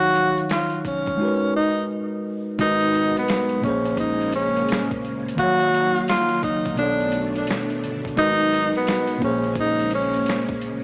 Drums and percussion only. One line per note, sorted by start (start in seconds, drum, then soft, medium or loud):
0.02 closed hi-hat soft
0.02 shaker soft
0.15 closed hi-hat medium
0.15 shaker soft
0.38 closed hi-hat soft
0.38 shaker soft
0.49 snare loud
0.49 closed hi-hat medium
0.49 shaker medium
0.70 closed hi-hat soft
0.70 shaker soft
0.85 kick medium
0.85 closed hi-hat medium
0.85 shaker soft
1.06 kick medium
1.06 closed hi-hat soft
1.06 shaker soft
2.59 kick loud
2.59 closed hi-hat loud
2.59 shaker medium
2.80 closed hi-hat soft
2.80 shaker soft
2.94 closed hi-hat medium
2.94 shaker soft
3.17 closed hi-hat soft
3.17 shaker soft
3.28 snare loud
3.28 closed hi-hat medium
3.28 shaker medium
3.49 closed hi-hat medium
3.49 shaker soft
3.64 kick medium
3.64 closed hi-hat medium
3.64 shaker soft
3.86 closed hi-hat soft
3.86 shaker soft
3.97 kick medium
3.97 closed hi-hat medium
3.97 shaker medium
4.21 closed hi-hat medium
4.21 shaker medium
4.32 closed hi-hat medium
4.56 closed hi-hat soft
4.56 shaker medium
4.68 snare loud
4.68 closed hi-hat medium
4.68 shaker medium
4.91 kick medium
4.91 closed hi-hat soft
4.91 shaker soft
5.05 closed hi-hat medium
5.05 shaker soft
5.28 closed hi-hat soft
5.28 shaker medium
5.38 kick loud
5.38 closed hi-hat loud
5.38 shaker medium
5.60 closed hi-hat soft
5.60 shaker soft
5.74 closed hi-hat medium
5.74 shaker soft
5.96 closed hi-hat soft
5.96 shaker soft
6.08 snare loud
6.08 closed hi-hat loud
6.08 shaker medium
6.29 closed hi-hat soft
6.29 shaker medium
6.43 kick medium
6.43 closed hi-hat medium
6.43 shaker medium
6.65 kick medium
6.65 closed hi-hat soft
6.65 shaker soft
6.77 closed hi-hat medium
6.77 shaker medium
7.01 closed hi-hat soft
7.01 shaker soft
7.12 closed hi-hat medium
7.36 closed hi-hat medium
7.36 shaker soft
7.47 snare loud
7.47 closed hi-hat loud
7.47 shaker medium
7.70 closed hi-hat soft
7.70 shaker soft
7.83 closed hi-hat medium
7.83 shaker soft
8.05 kick medium
8.05 closed hi-hat medium
8.05 shaker medium
8.17 kick loud
8.17 closed hi-hat loud
8.17 shaker medium
8.39 closed hi-hat medium
8.39 shaker soft
8.53 closed hi-hat medium
8.53 shaker medium
8.75 closed hi-hat soft
8.75 shaker soft
8.87 snare loud
8.87 closed hi-hat medium
8.87 shaker medium
9.07 closed hi-hat medium
9.07 shaker soft
9.22 kick medium
9.22 closed hi-hat medium
9.22 shaker medium
9.44 closed hi-hat soft
9.44 shaker soft
9.55 kick medium
9.55 closed hi-hat medium
9.55 shaker medium
9.79 closed hi-hat soft
9.79 shaker soft
9.90 closed hi-hat medium
10.14 closed hi-hat medium
10.14 shaker medium
10.26 snare loud
10.26 closed hi-hat medium
10.26 shaker medium
10.48 kick medium
10.48 closed hi-hat soft
10.48 shaker soft
10.61 closed hi-hat medium
10.61 shaker soft